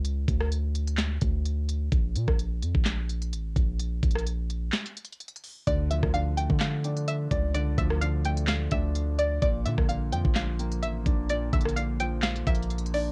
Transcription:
Already playing: C#2
0.05 closed hi-hat
0.28 D2, kick, closed hi-hat
0.40 cross-stick
0.52 closed hi-hat
0.75 closed hi-hat
0.87 closed hi-hat
0.97 snare, clap, closed hi-hat
1.21 D2, kick, closed hi-hat
1.45 closed hi-hat
1.69 closed hi-hat
1.92 A#1, kick, closed hi-hat
2.15 A#2, closed hi-hat
2.28 A#1, kick, cross-stick
2.39 closed hi-hat
2.62 F2, closed hi-hat
2.75 A#1, kick
2.85 snare, clap, closed hi-hat
3.09 closed hi-hat
3.22 closed hi-hat
3.33 A1, closed hi-hat
3.56 A#1, kick, closed hi-hat
3.80 closed hi-hat
4.03 A#1, kick, closed hi-hat
4.11 closed hi-hat
4.16 cross-stick, closed hi-hat
4.27 closed hi-hat
4.50 closed hi-hat
4.72 snare, clap, closed hi-hat
4.86 closed hi-hat
4.97 closed hi-hat
5.05 closed hi-hat
5.12 closed hi-hat
5.20 closed hi-hat
5.28 closed hi-hat
5.36 closed hi-hat
5.44 open hi-hat
5.67 D2 D3 D5, kick, closed hi-hat
5.91 F3 E5, closed hi-hat
6.03 D2, kick, cross-stick
6.14 D3 F5, closed hi-hat
6.37 A3 G5, closed hi-hat
6.50 D3, kick
6.60 F5, snare, clap, closed hi-hat
6.84 D4, closed hi-hat
6.97 closed hi-hat
7.08 E5, closed hi-hat
7.31 C#2 D5, kick, closed hi-hat
7.54 D3 D5, closed hi-hat
7.78 D2 F3 E5, kick, closed hi-hat
7.90 cross-stick
8.01 D3 F5, closed hi-hat
8.25 A3 G5, closed hi-hat
8.37 closed hi-hat
8.47 F5, snare, clap, closed hi-hat
8.71 D2 D4 E5, kick, closed hi-hat
8.95 closed hi-hat
9.18 D5, closed hi-hat
9.42 A#1 A#2 D5, kick, closed hi-hat
9.65 A#2 D3 E5, closed hi-hat
9.78 A#1, kick, cross-stick
9.89 A#2 F5, closed hi-hat
10.12 F2 F3 G5, closed hi-hat
10.25 A#1, kick
10.35 F5, snare, clap, closed hi-hat
10.59 A#3, closed hi-hat
10.72 closed hi-hat
10.82 A1 E5, closed hi-hat
11.06 A#1 D4, kick, closed hi-hat
11.29 A#2 D5, closed hi-hat
11.53 A#1 D3 E5, kick, closed hi-hat
11.61 closed hi-hat
11.65 cross-stick, closed hi-hat
11.76 A#2 F5, closed hi-hat
12.00 F3 G5, closed hi-hat
12.22 F5, snare, clap, closed hi-hat
12.36 closed hi-hat
12.47 A#1 A#3 E5, kick, closed hi-hat
12.55 closed hi-hat
12.62 closed hi-hat
12.70 closed hi-hat
12.78 closed hi-hat
12.86 closed hi-hat
12.94 D4 D5, open hi-hat

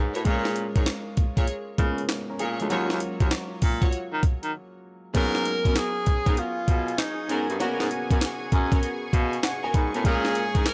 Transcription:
Already playing: G#2 A#3 B3 C#4 F#4
0.14 A2 F#4 A#4 B4 C#5, closed hi-hat
0.25 A#2 G#3 A#3 C#4 F4 G#4 A#4 C#5, kick, closed hi-hat
0.45 snare
0.56 closed hi-hat
0.76 G#2 G#4 A#4 C#5, kick, closed hi-hat
0.86 snare, clap, closed hi-hat
1.17 A#2, kick, closed hi-hat
1.37 A#2 G#4 A#4 C#5, kick, closed hi-hat
1.48 closed hi-hat
1.78 C#3 G#3 A#3 B3 F4, kick, closed hi-hat
1.86 C#4
1.98 closed hi-hat
2.09 snare, clap, closed hi-hat
2.30 C#4 A#4
2.39 A#2 G#4 A#4 C#5, closed hi-hat
2.60 D2 G#3 F4, closed hi-hat
2.70 D#2 F#3 A#3 C#4 F4 F#4 C#5, closed hi-hat
2.90 D#2, snare
3.00 closed hi-hat
3.20 D#2 F4 F#4 C#5, kick, closed hi-hat
3.31 snare, clap, closed hi-hat
3.62 A#2, kick, open hi-hat
3.82 F4 F#4 C#5, kick, closed hi-hat
3.92 closed hi-hat
4.13 D#3
4.23 kick, closed hi-hat
4.43 D#3, closed hi-hat
5.14 G#2 F#3 A#3 B3 C#4 F#4 G#4 A#4 G#5 C#6, kick, closed hi-hat, crash
5.35 snare
5.45 closed hi-hat
5.65 F#2 B3 C#4 F#4 A#4, kick, closed hi-hat
5.76 G#4, snare, clap, closed hi-hat
6.06 G#2, kick, closed hi-hat
6.26 G#2 B3 C#4 F#4 A#4, kick, closed hi-hat
6.37 F4, closed hi-hat
6.68 B2, kick, closed hi-hat
6.88 closed hi-hat
6.98 D#4, snare, clap, closed hi-hat
7.29 G#2 B3 C#4 F#4 A#4, closed hi-hat
7.49 G2, closed hi-hat
7.59 A#3 B3 C#4 F#4 A#4, closed hi-hat
7.80 G#2, snare
7.91 closed hi-hat
8.10 F#2 B3 C#4 F#4 A#4, kick, closed hi-hat
8.21 snare, clap, closed hi-hat
8.52 F#2, kick, closed hi-hat
8.72 B3 C#4 F#4 A#4, kick, closed hi-hat
8.83 closed hi-hat
9.13 B2 F5, kick, closed hi-hat
9.33 closed hi-hat
9.43 F#5, snare, clap, closed hi-hat
9.63 B3 C#4 F#4 A#4 G#5
9.74 G#2 B5, kick, closed hi-hat
9.94 A2 B3 C#4 F#4 A#4, closed hi-hat
10.04 A#2 G#3 A#3 C#4 G#4 A#4 F5 G#5, kick, closed hi-hat
10.25 snare
10.35 closed hi-hat
10.55 G#2 C#4 G#4 A#4, kick, closed hi-hat
10.66 A#4, snare, clap, closed hi-hat

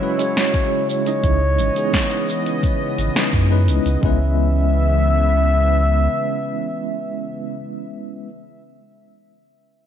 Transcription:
Already playing: C#3 F#3 G#3 E4 C#5
0.01 G#3 C#4 E4 F#4 B4
0.18 G#3 C#4 E4 F#4 C#5, closed hi-hat, shaker
0.37 snare, shaker
0.54 kick, closed hi-hat, shaker
0.89 C#5, shaker
1.06 G#3 C#4 D#4 E4 D#5, closed hi-hat, shaker
1.23 C#2 E3 B3 D#5, kick, closed hi-hat, shaker
1.58 G#1, closed hi-hat, shaker
1.75 G#3 C#4 D#4 E4 G#4, closed hi-hat, shaker
1.93 kick, snare, closed hi-hat, shaker
2.11 closed hi-hat
2.29 shaker
2.46 closed hi-hat, shaker
2.63 kick, closed hi-hat, shaker
2.98 G#1, closed hi-hat, shaker
3.15 G#3 C#4 D#4 E4 B4, snare, shaker
3.33 F#2, kick, closed hi-hat, shaker
3.50 G#3 C#4 D#4 E4 B4
3.68 C#2, closed hi-hat, shaker
3.85 C#2, closed hi-hat, shaker
4.01 C#2 C#3 E3 G#3 B3 C#4 E4 E5, kick
4.06 B4

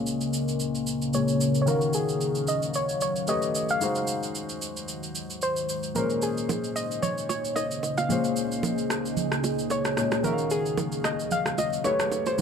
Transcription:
Already playing: A#2 C#3 G#3 A#3 C#4 A#4 D#5 F5
0.07 shaker
0.21 shaker
0.33 shaker
0.48 shaker
0.60 shaker
0.75 shaker
0.87 shaker
1.02 shaker
1.13 A#2 G#3 C#4 C#5, shaker
1.28 shaker
1.41 shaker
1.55 shaker
1.62 C#5
1.66 D#3 F#3 C#4 F#4 A#4 C#5 F5, shaker
1.81 shaker
1.93 G#4, shaker
2.09 shaker
2.21 shaker
2.35 shaker
2.47 D#5, shaker
2.62 shaker
2.74 C#5, shaker
2.89 shaker
3.01 C#5, shaker
3.16 shaker
3.27 A3 G4 B4 C#5 D#5, shaker
3.42 shaker
3.55 shaker
3.69 F5, shaker
3.80 D#3 G#3 D#4 F#4 C5 D#5, shaker
3.95 shaker
4.07 shaker
4.23 shaker
4.35 shaker
4.49 shaker
4.62 shaker
4.77 shaker
4.88 shaker
5.03 shaker
5.15 shaker
5.30 shaker
5.42 C5, shaker
5.56 shaker
5.69 shaker
5.83 shaker
5.95 A#2 C#3 G#3 A#3 C#4 G#4 A#4 C5, low conga, shaker
6.10 shaker
6.22 G#4, shaker
6.38 shaker
6.49 high bongo, low conga, shaker
6.64 shaker
6.76 D#5, shaker
6.91 shaker
7.02 C#5, low conga, shaker
7.18 shaker
7.29 C#5, low bongo, shaker
7.45 shaker
7.56 D#5, high bongo, shaker
7.71 shaker
7.83 high bongo, shaker
7.98 F5, low bongo, shaker
8.09 A#2 G#3 C#4 C5, low conga, shaker
8.24 shaker
8.36 shaker
8.52 shaker
8.63 high bongo, low conga, shaker
8.78 shaker
8.90 cross-stick, shaker
9.06 shaker
9.17 low conga, shaker
9.32 cross-stick, shaker
9.44 low bongo, shaker
9.59 shaker
9.70 C#5, high bongo, shaker
9.85 cross-stick, shaker
9.97 A#2 G#3 C#4 C#5, cross-stick, high bongo, shaker
10.12 cross-stick, low bongo, shaker
10.23 D#3 F#3 C#4 F#4 A#4 C#5 E5 F5, low conga, shaker
10.33 F5
10.38 shaker
10.50 G#4, shaker
10.66 shaker
10.77 high bongo, low conga, shaker
10.92 shaker
11.04 D#5, cross-stick, shaker
11.20 shaker
11.31 F5, low conga, shaker
11.46 cross-stick, shaker
11.58 D#5, low bongo, shaker
11.73 shaker
11.84 A3 G4 B4 C#5, high bongo, shaker
12.00 cross-stick, shaker
12.12 high bongo, shaker
12.26 C5, low bongo, shaker
12.38 G#3

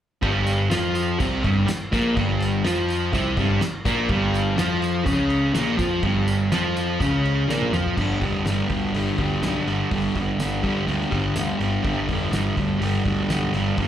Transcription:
0.22 G1 G2 G3, kick, crash
0.47 tambourine, crash
0.70 F2 F3 F4, snare, tambourine, crash
0.95 tambourine, crash
1.19 C2 C3 C4, kick, tambourine, crash
1.43 G1 G2 G3, kick, tambourine, crash
1.67 muted distorted electric guitar stroke, muted picked electric bass stroke, snare, tambourine, crash
1.92 A#1 A#2 A#3, kick, tambourine, crash
2.15 G1 G2 G3, kick, crash
2.40 tambourine, crash
2.64 F2 F3 F4, snare, tambourine, crash
2.88 tambourine, crash
3.12 C2 C3 C4, kick, tambourine, crash
3.37 G1 G2 G3, kick, tambourine, crash
3.61 muted distorted electric guitar stroke, muted picked electric bass stroke, snare, tambourine, crash
3.85 A#1 A#2 A#3, kick, tambourine, crash
4.09 G1 G2 G3, kick, crash
4.34 tambourine, crash
4.57 F2 F3 F4, snare, tambourine, crash
4.82 tambourine, crash
5.05 C#2 C#3 C#4, kick, tambourine, crash
5.30 tambourine, crash
5.53 A#1 A#2 A#3, snare, tambourine, crash
5.78 F2 F3 F4, kick, tambourine, crash
6.03 G1 G2 G3, kick, crash
6.28 tambourine, crash
6.52 F2 F3 F4, snare, tambourine, crash
6.76 tambourine, crash
7.00 C#2 C#3 C#4, kick, tambourine, crash
7.25 crash
7.48 A#1 A#2 A#3, snare, tambourine
7.62 high tom
7.72 F2 F3 F4, mid tom, tambourine
7.86 floor tom
7.96 G1 G2 D3, kick, crash
8.00 G3
8.20 F1 G3, kick, open hi-hat
8.25 D3
8.45 G1 G2 D3, snare, open hi-hat, tambourine
8.50 G3
8.69 D2 D3 G3, kick, open hi-hat
8.94 G1 G2 D3, open hi-hat
8.98 G3
9.18 D2 D3 G3, kick, open hi-hat
9.22 G2
9.42 B1 G2 D3, snare, open hi-hat, tambourine
9.47 G3
9.66 G1 G3, open hi-hat
9.73 D3
9.91 G1 G2 D3, kick, open hi-hat
9.96 G3
10.16 G1 G3, kick, open hi-hat
10.21 D3
10.39 G1 G2 D3, snare, open hi-hat, tambourine
10.44 G3
10.63 G3, kick, open hi-hat
10.68 D3
10.87 D2 G2 D3 G3, open hi-hat
11.01 snare
11.10 G1 D3 G3, kick, open hi-hat
11.15 G2
11.35 D2 G2 D3, snare, open hi-hat, tambourine
11.40 G3
11.59 G1 D3 G3, open hi-hat
11.84 G1 G2 D3 G3, kick, open hi-hat
12.09 F1 G3, kick, open hi-hat
12.13 D3
12.32 G1 G2 D3, snare, open hi-hat, tambourine
12.36 G3
12.57 D2 G3, kick, open hi-hat
12.61 D3
12.81 G1 G2 D3, open hi-hat
12.86 G3
12.94 snare
13.04 D2 G2 D3 G3, kick, open hi-hat
13.28 B1 G2 D3 G3, snare, open hi-hat, tambourine
13.54 G1 G3, open hi-hat
13.58 D3
13.77 G1 G2 D3 G3, kick, open hi-hat

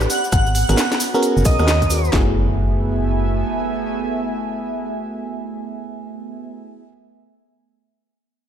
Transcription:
Already playing: D5 F#5
0.01 cross-stick, cabasa
0.10 B3 F#5, open hi-hat, cabasa
0.24 cabasa
0.32 G#1 F#5, kick, cross-stick, closed hi-hat, cabasa
0.46 cabasa
0.55 F#5, open hi-hat, cabasa
0.68 G#1 B3 C#4 F#4 G#4 A#4, cross-stick, closed hi-hat, cabasa
0.77 snare, closed hi-hat, cabasa
0.92 snare, closed hi-hat, cabasa
1.00 C#5 A#5, open hi-hat, cabasa
1.14 B3 C#4 F#4 G#4 A#4, cabasa
1.23 closed hi-hat, cabasa
1.37 F#1, cabasa
1.45 B1 B3 C#4 F#4 G#4 A#4 D#5, kick, open hi-hat, cabasa
1.59 D#2 B3 C#4 F#4 G#4 A#4, cross-stick, cabasa
1.68 snare, closed hi-hat, cabasa
1.82 kick, closed hi-hat, cabasa
1.90 B3 C#4 F#4 G#4 A#4, open hi-hat, cabasa
2.04 cabasa
2.13 F#1 A3 B3 E4 F#4 G#4, kick, snare, clap, impact
2.22 A3
2.29 E5
2.33 G#5

